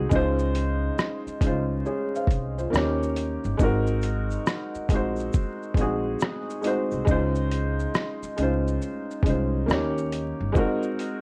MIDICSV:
0, 0, Header, 1, 5, 480
1, 0, Start_track
1, 0, Key_signature, -5, "major"
1, 0, Tempo, 869565
1, 62, Time_signature, 4, 2, 24, 8
1, 6188, End_track
2, 0, Start_track
2, 0, Title_t, "Felt piano"
2, 0, Program_c, 0, 0
2, 0, Control_c, 0, 64, 127
2, 0, Note_on_c, 0, 56, 72
2, 0, Note_on_c, 0, 60, 76
2, 0, Note_on_c, 0, 63, 74
2, 0, Note_on_c, 0, 66, 73
2, 0, Note_on_c, 0, 68, 88
2, 0, Note_on_c, 0, 72, 83
2, 51, Note_off_c, 0, 56, 0
2, 51, Note_on_c, 0, 56, 106
2, 60, Note_on_c, 0, 61, 94
2, 68, Control_c, 0, 64, 0
2, 69, Note_off_c, 0, 63, 0
2, 69, Note_on_c, 0, 63, 95
2, 70, Note_off_c, 0, 60, 0
2, 71, Note_off_c, 0, 68, 0
2, 73, Note_off_c, 0, 66, 0
2, 73, Note_off_c, 0, 72, 0
2, 77, Note_on_c, 0, 65, 89
2, 84, Note_on_c, 0, 72, 127
2, 182, Control_c, 0, 64, 127
2, 531, Note_off_c, 0, 56, 0
2, 535, Note_off_c, 0, 61, 0
2, 540, Note_off_c, 0, 63, 0
2, 544, Note_off_c, 0, 65, 0
2, 547, Note_off_c, 0, 72, 0
2, 778, Note_on_c, 0, 56, 75
2, 785, Note_on_c, 0, 61, 70
2, 793, Note_on_c, 0, 63, 69
2, 801, Note_on_c, 0, 65, 76
2, 810, Note_on_c, 0, 72, 89
2, 1024, Note_on_c, 0, 73, 62
2, 1028, Note_on_c, 0, 68, 56
2, 1032, Note_off_c, 0, 65, 0
2, 1036, Note_off_c, 0, 72, 0
2, 1117, Note_off_c, 0, 56, 0
2, 1120, Note_off_c, 0, 61, 0
2, 1124, Note_off_c, 0, 63, 0
2, 1171, Note_off_c, 0, 73, 0
2, 1173, Note_off_c, 0, 68, 0
2, 1187, Note_on_c, 0, 77, 67
2, 1192, Note_on_c, 0, 72, 58
2, 1411, Note_off_c, 0, 77, 0
2, 1413, Note_off_c, 0, 72, 0
2, 1425, Note_on_c, 0, 72, 69
2, 1430, Note_on_c, 0, 65, 49
2, 1490, Note_on_c, 0, 58, 84
2, 1498, Note_on_c, 0, 61, 76
2, 1506, Note_on_c, 0, 63, 72
2, 1509, Control_c, 0, 64, 0
2, 1516, Note_on_c, 0, 67, 79
2, 1525, Note_on_c, 0, 73, 84
2, 1617, Control_c, 0, 64, 127
2, 1650, Note_off_c, 0, 72, 0
2, 1652, Note_off_c, 0, 65, 0
2, 1909, Note_off_c, 0, 58, 0
2, 1913, Note_off_c, 0, 61, 0
2, 1917, Note_off_c, 0, 63, 0
2, 1922, Note_off_c, 0, 67, 0
2, 1926, Note_off_c, 0, 73, 0
2, 1972, Note_on_c, 0, 56, 104
2, 1981, Note_on_c, 0, 60, 92
2, 1988, Note_on_c, 0, 63, 100
2, 1989, Control_c, 0, 64, 0
2, 1996, Note_on_c, 0, 66, 91
2, 2006, Note_on_c, 0, 70, 117
2, 2095, Control_c, 0, 64, 127
2, 2452, Note_off_c, 0, 56, 0
2, 2456, Note_off_c, 0, 60, 0
2, 2460, Note_off_c, 0, 63, 0
2, 2463, Note_off_c, 0, 66, 0
2, 2468, Note_off_c, 0, 70, 0
2, 2701, Note_on_c, 0, 56, 84
2, 2710, Note_on_c, 0, 60, 76
2, 2718, Note_on_c, 0, 63, 71
2, 2726, Note_on_c, 0, 66, 73
2, 2735, Note_on_c, 0, 72, 92
2, 3038, Note_off_c, 0, 56, 0
2, 3043, Note_off_c, 0, 60, 0
2, 3047, Note_off_c, 0, 63, 0
2, 3051, Note_off_c, 0, 66, 0
2, 3055, Note_off_c, 0, 72, 0
2, 3178, Note_on_c, 0, 56, 80
2, 3186, Note_on_c, 0, 60, 65
2, 3193, Note_on_c, 0, 63, 70
2, 3203, Note_on_c, 0, 66, 75
2, 3209, Note_on_c, 0, 68, 84
2, 3517, Note_off_c, 0, 56, 0
2, 3521, Note_off_c, 0, 60, 0
2, 3524, Note_off_c, 0, 63, 0
2, 3529, Note_off_c, 0, 66, 0
2, 3532, Note_off_c, 0, 68, 0
2, 3653, Note_on_c, 0, 56, 72
2, 3660, Note_on_c, 0, 60, 73
2, 3668, Note_on_c, 0, 63, 75
2, 3675, Note_on_c, 0, 66, 71
2, 3684, Note_on_c, 0, 72, 91
2, 3839, Note_off_c, 0, 56, 0
2, 3843, Note_off_c, 0, 60, 0
2, 3847, Note_off_c, 0, 63, 0
2, 3851, Note_off_c, 0, 66, 0
2, 3855, Note_off_c, 0, 72, 0
2, 3891, Note_on_c, 0, 56, 110
2, 3900, Note_on_c, 0, 61, 86
2, 3908, Note_on_c, 0, 63, 94
2, 3909, Control_c, 0, 64, 0
2, 3917, Note_on_c, 0, 65, 87
2, 3924, Note_on_c, 0, 72, 122
2, 3991, Control_c, 0, 64, 127
2, 4371, Note_off_c, 0, 56, 0
2, 4376, Note_off_c, 0, 61, 0
2, 4379, Note_off_c, 0, 63, 0
2, 4384, Note_off_c, 0, 65, 0
2, 4388, Note_off_c, 0, 72, 0
2, 4619, Note_on_c, 0, 56, 80
2, 4627, Note_on_c, 0, 61, 66
2, 4634, Note_on_c, 0, 63, 72
2, 4642, Note_on_c, 0, 65, 72
2, 4651, Note_on_c, 0, 72, 92
2, 4957, Note_off_c, 0, 56, 0
2, 4961, Note_off_c, 0, 61, 0
2, 4965, Note_off_c, 0, 63, 0
2, 4969, Note_off_c, 0, 65, 0
2, 4973, Note_off_c, 0, 72, 0
2, 5097, Note_on_c, 0, 56, 85
2, 5104, Note_on_c, 0, 61, 70
2, 5115, Note_on_c, 0, 63, 68
2, 5123, Note_on_c, 0, 65, 65
2, 5131, Note_on_c, 0, 72, 87
2, 5330, Note_off_c, 0, 61, 0
2, 5333, Note_on_c, 0, 58, 87
2, 5338, Note_on_c, 0, 61, 76
2, 5339, Note_off_c, 0, 63, 0
2, 5340, Note_off_c, 0, 56, 0
2, 5347, Note_on_c, 0, 63, 77
2, 5350, Control_c, 0, 64, 0
2, 5353, Note_off_c, 0, 65, 0
2, 5356, Note_on_c, 0, 67, 77
2, 5357, Note_off_c, 0, 72, 0
2, 5364, Note_on_c, 0, 73, 94
2, 5449, Control_c, 0, 64, 127
2, 5750, Note_off_c, 0, 58, 0
2, 5753, Note_off_c, 0, 61, 0
2, 5757, Note_off_c, 0, 63, 0
2, 5761, Note_off_c, 0, 67, 0
2, 5766, Note_off_c, 0, 73, 0
2, 5809, Note_on_c, 0, 56, 106
2, 5817, Note_on_c, 0, 60, 106
2, 5825, Note_on_c, 0, 63, 100
2, 5829, Control_c, 0, 64, 0
2, 5832, Note_on_c, 0, 66, 93
2, 5842, Note_on_c, 0, 70, 112
2, 5938, Control_c, 0, 64, 127
2, 6188, Note_off_c, 0, 56, 0
2, 6188, Note_off_c, 0, 60, 0
2, 6188, Note_off_c, 0, 63, 0
2, 6188, Note_off_c, 0, 66, 0
2, 6188, Note_off_c, 0, 70, 0
2, 6188, End_track
3, 0, Start_track
3, 0, Title_t, "Upright bass"
3, 0, Program_c, 1, 32
3, 64, Note_on_c, 1, 37, 87
3, 488, Note_off_c, 1, 37, 0
3, 781, Note_on_c, 1, 37, 81
3, 994, Note_off_c, 1, 37, 0
3, 1256, Note_on_c, 1, 36, 91
3, 1472, Note_off_c, 1, 36, 0
3, 1505, Note_on_c, 1, 39, 100
3, 1854, Note_off_c, 1, 39, 0
3, 1903, Note_on_c, 1, 31, 84
3, 1976, Note_off_c, 1, 31, 0
3, 1985, Note_on_c, 1, 32, 90
3, 2409, Note_off_c, 1, 32, 0
3, 2700, Note_on_c, 1, 34, 88
3, 2914, Note_off_c, 1, 34, 0
3, 3173, Note_on_c, 1, 34, 94
3, 3390, Note_off_c, 1, 34, 0
3, 3821, Note_on_c, 1, 36, 77
3, 3894, Note_off_c, 1, 36, 0
3, 3905, Note_on_c, 1, 37, 94
3, 4329, Note_off_c, 1, 37, 0
3, 4629, Note_on_c, 1, 37, 84
3, 4839, Note_off_c, 1, 37, 0
3, 5096, Note_on_c, 1, 36, 89
3, 5311, Note_off_c, 1, 36, 0
3, 5345, Note_on_c, 1, 39, 101
3, 5694, Note_off_c, 1, 39, 0
3, 5744, Note_on_c, 1, 31, 86
3, 5816, Note_off_c, 1, 31, 0
3, 6188, End_track
4, 0, Start_track
4, 0, Title_t, "Muted upright bass strokes"
4, 700, Note_on_c, 9, 29, 44
4, 755, Note_off_c, 9, 29, 0
4, 2623, Note_on_c, 9, 29, 45
4, 2678, Note_off_c, 9, 29, 0
4, 4542, Note_on_c, 9, 29, 47
4, 4597, Note_off_c, 9, 29, 0
4, 6188, End_track
5, 0, Start_track
5, 0, Title_t, "Drums"
5, 62, Note_on_c, 9, 82, 60
5, 63, Note_on_c, 9, 36, 99
5, 117, Note_off_c, 9, 82, 0
5, 118, Note_off_c, 9, 36, 0
5, 215, Note_on_c, 9, 82, 51
5, 270, Note_off_c, 9, 82, 0
5, 303, Note_on_c, 9, 42, 67
5, 303, Note_on_c, 9, 82, 47
5, 358, Note_off_c, 9, 42, 0
5, 358, Note_off_c, 9, 82, 0
5, 542, Note_on_c, 9, 82, 47
5, 546, Note_on_c, 9, 37, 100
5, 598, Note_off_c, 9, 82, 0
5, 601, Note_off_c, 9, 37, 0
5, 704, Note_on_c, 9, 82, 40
5, 759, Note_off_c, 9, 82, 0
5, 779, Note_on_c, 9, 36, 88
5, 783, Note_on_c, 9, 42, 66
5, 783, Note_on_c, 9, 82, 47
5, 834, Note_off_c, 9, 36, 0
5, 838, Note_off_c, 9, 42, 0
5, 838, Note_off_c, 9, 82, 0
5, 1026, Note_on_c, 9, 82, 60
5, 1081, Note_off_c, 9, 82, 0
5, 1188, Note_on_c, 9, 82, 46
5, 1243, Note_off_c, 9, 82, 0
5, 1254, Note_on_c, 9, 36, 84
5, 1272, Note_on_c, 9, 42, 57
5, 1272, Note_on_c, 9, 82, 42
5, 1309, Note_off_c, 9, 36, 0
5, 1327, Note_off_c, 9, 42, 0
5, 1327, Note_off_c, 9, 82, 0
5, 1427, Note_on_c, 9, 82, 44
5, 1482, Note_off_c, 9, 82, 0
5, 1511, Note_on_c, 9, 82, 56
5, 1521, Note_on_c, 9, 37, 102
5, 1566, Note_off_c, 9, 82, 0
5, 1576, Note_off_c, 9, 37, 0
5, 1671, Note_on_c, 9, 82, 44
5, 1726, Note_off_c, 9, 82, 0
5, 1746, Note_on_c, 9, 42, 61
5, 1746, Note_on_c, 9, 82, 42
5, 1801, Note_off_c, 9, 42, 0
5, 1801, Note_off_c, 9, 82, 0
5, 1900, Note_on_c, 9, 82, 37
5, 1956, Note_off_c, 9, 82, 0
5, 1983, Note_on_c, 9, 82, 63
5, 1984, Note_off_c, 9, 82, 0
5, 1984, Note_on_c, 9, 36, 97
5, 1984, Note_on_c, 9, 82, 62
5, 2039, Note_off_c, 9, 36, 0
5, 2039, Note_off_c, 9, 82, 0
5, 2136, Note_on_c, 9, 82, 47
5, 2191, Note_off_c, 9, 82, 0
5, 2218, Note_on_c, 9, 82, 44
5, 2226, Note_off_c, 9, 82, 0
5, 2226, Note_on_c, 9, 42, 66
5, 2226, Note_on_c, 9, 82, 46
5, 2281, Note_off_c, 9, 42, 0
5, 2281, Note_off_c, 9, 82, 0
5, 2375, Note_on_c, 9, 82, 44
5, 2381, Note_off_c, 9, 82, 0
5, 2381, Note_on_c, 9, 82, 34
5, 2436, Note_off_c, 9, 82, 0
5, 2465, Note_on_c, 9, 82, 52
5, 2467, Note_off_c, 9, 82, 0
5, 2467, Note_on_c, 9, 82, 77
5, 2468, Note_on_c, 9, 37, 106
5, 2522, Note_off_c, 9, 82, 0
5, 2523, Note_off_c, 9, 37, 0
5, 2621, Note_on_c, 9, 82, 43
5, 2676, Note_off_c, 9, 82, 0
5, 2699, Note_on_c, 9, 36, 91
5, 2700, Note_on_c, 9, 82, 45
5, 2704, Note_off_c, 9, 82, 0
5, 2704, Note_on_c, 9, 42, 64
5, 2704, Note_on_c, 9, 82, 43
5, 2754, Note_off_c, 9, 36, 0
5, 2759, Note_off_c, 9, 42, 0
5, 2759, Note_off_c, 9, 82, 0
5, 2850, Note_on_c, 9, 82, 49
5, 2869, Note_off_c, 9, 82, 0
5, 2869, Note_on_c, 9, 82, 42
5, 2924, Note_off_c, 9, 82, 0
5, 2941, Note_on_c, 9, 82, 65
5, 2946, Note_off_c, 9, 82, 0
5, 2946, Note_on_c, 9, 82, 60
5, 2949, Note_on_c, 9, 36, 95
5, 3002, Note_off_c, 9, 82, 0
5, 3004, Note_off_c, 9, 36, 0
5, 3107, Note_on_c, 9, 82, 45
5, 3162, Note_off_c, 9, 82, 0
5, 3172, Note_on_c, 9, 36, 87
5, 3185, Note_on_c, 9, 82, 41
5, 3187, Note_off_c, 9, 82, 0
5, 3187, Note_on_c, 9, 42, 57
5, 3187, Note_on_c, 9, 82, 46
5, 3227, Note_off_c, 9, 36, 0
5, 3242, Note_off_c, 9, 42, 0
5, 3242, Note_off_c, 9, 82, 0
5, 3421, Note_on_c, 9, 82, 75
5, 3427, Note_off_c, 9, 82, 0
5, 3427, Note_on_c, 9, 82, 61
5, 3437, Note_on_c, 9, 37, 102
5, 3482, Note_off_c, 9, 82, 0
5, 3492, Note_off_c, 9, 37, 0
5, 3589, Note_on_c, 9, 82, 49
5, 3644, Note_off_c, 9, 82, 0
5, 3658, Note_on_c, 9, 82, 45
5, 3668, Note_off_c, 9, 82, 0
5, 3668, Note_on_c, 9, 42, 65
5, 3668, Note_on_c, 9, 82, 43
5, 3723, Note_off_c, 9, 42, 0
5, 3723, Note_off_c, 9, 82, 0
5, 3817, Note_on_c, 9, 82, 53
5, 3872, Note_off_c, 9, 82, 0
5, 3904, Note_on_c, 9, 36, 97
5, 3906, Note_on_c, 9, 82, 62
5, 3959, Note_off_c, 9, 36, 0
5, 3961, Note_off_c, 9, 82, 0
5, 4057, Note_on_c, 9, 82, 46
5, 4112, Note_off_c, 9, 82, 0
5, 4147, Note_on_c, 9, 42, 65
5, 4147, Note_on_c, 9, 82, 49
5, 4202, Note_off_c, 9, 42, 0
5, 4202, Note_off_c, 9, 82, 0
5, 4302, Note_on_c, 9, 82, 37
5, 4357, Note_off_c, 9, 82, 0
5, 4385, Note_on_c, 9, 82, 50
5, 4388, Note_on_c, 9, 37, 106
5, 4440, Note_off_c, 9, 82, 0
5, 4443, Note_off_c, 9, 37, 0
5, 4544, Note_on_c, 9, 82, 44
5, 4599, Note_off_c, 9, 82, 0
5, 4626, Note_on_c, 9, 42, 67
5, 4626, Note_on_c, 9, 82, 47
5, 4681, Note_off_c, 9, 42, 0
5, 4681, Note_off_c, 9, 82, 0
5, 4791, Note_on_c, 9, 82, 43
5, 4846, Note_off_c, 9, 82, 0
5, 4868, Note_on_c, 9, 82, 58
5, 4923, Note_off_c, 9, 82, 0
5, 5029, Note_on_c, 9, 82, 46
5, 5084, Note_off_c, 9, 82, 0
5, 5094, Note_on_c, 9, 36, 93
5, 5111, Note_on_c, 9, 42, 61
5, 5111, Note_on_c, 9, 82, 41
5, 5149, Note_off_c, 9, 36, 0
5, 5167, Note_off_c, 9, 42, 0
5, 5167, Note_off_c, 9, 82, 0
5, 5351, Note_on_c, 9, 82, 58
5, 5360, Note_on_c, 9, 37, 103
5, 5406, Note_off_c, 9, 82, 0
5, 5416, Note_off_c, 9, 37, 0
5, 5509, Note_on_c, 9, 82, 46
5, 5564, Note_off_c, 9, 82, 0
5, 5589, Note_on_c, 9, 42, 62
5, 5589, Note_on_c, 9, 82, 44
5, 5644, Note_off_c, 9, 42, 0
5, 5644, Note_off_c, 9, 82, 0
5, 5825, Note_on_c, 9, 36, 100
5, 5827, Note_on_c, 9, 82, 61
5, 5881, Note_off_c, 9, 36, 0
5, 5882, Note_off_c, 9, 82, 0
5, 5978, Note_on_c, 9, 82, 50
5, 6033, Note_off_c, 9, 82, 0
5, 6067, Note_on_c, 9, 42, 65
5, 6067, Note_on_c, 9, 82, 48
5, 6122, Note_off_c, 9, 42, 0
5, 6122, Note_off_c, 9, 82, 0
5, 6188, End_track
0, 0, End_of_file